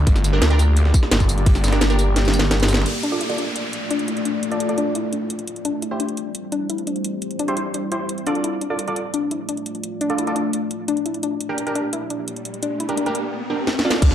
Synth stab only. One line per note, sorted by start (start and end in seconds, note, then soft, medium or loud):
0.33 0.41 D4 medium
0.33 0.41 G4 medium
0.33 0.41 A#4 loud
0.50 0.63 D4 medium
0.50 0.63 G4 medium
0.50 0.63 A#4 medium
1.73 1.81 D4 medium
1.73 1.81 G4 medium
1.73 1.81 A#4 medium
1.90 1.98 D4 medium
1.90 1.98 G4 medium
1.90 1.98 A#4 loud
3.12 3.20 F4 medium
3.12 3.20 A4 medium
3.12 3.20 D5 medium
3.30 3.42 F4 medium
3.30 3.42 A4 medium
3.30 3.42 D5 medium
4.52 4.60 F4 medium
4.52 4.60 A4 medium
4.52 4.60 D5 medium
4.69 4.77 F4 medium
4.69 4.77 A4 medium
4.69 4.77 D5 medium
5.91 5.99 E4 medium
5.91 5.99 G4 medium
5.91 5.99 C5 medium
7.48 7.56 E4 medium
7.48 7.56 G4 medium
7.48 7.56 C5 medium
7.92 8.00 E4 medium
7.92 8.00 G4 medium
7.92 8.00 C5 medium
8.27 8.68 F4 loud
8.27 8.68 A4 medium
8.27 8.68 D5 loud
8.70 8.78 F4 medium
8.70 8.78 A4 medium
8.70 8.78 D5 medium
8.88 9.00 F4 medium
8.88 9.00 A4 medium
8.88 9.00 D5 medium
10.10 10.18 F4 medium
10.10 10.18 A4 medium
10.10 10.18 D5 medium
10.27 10.35 F4 medium
10.27 10.35 A4 medium
10.27 10.35 D5 medium
11.49 11.57 D4 medium
11.49 11.57 G4 medium
11.49 11.57 A#4 medium
11.67 11.79 D4 medium
11.67 11.79 G4 medium
11.67 11.79 A#4 medium
12.89 12.97 D4 medium
12.89 12.97 G4 medium
12.89 12.97 A#4 medium
13.06 13.14 D4 medium
13.06 13.14 G4 medium
13.06 13.14 A#4 medium
13.50 13.58 D4 medium
13.50 13.58 G4 medium
13.50 13.58 A#4 medium
13.85 14.15 F4 medium
13.85 14.15 A4 medium
13.85 14.15 D5 loud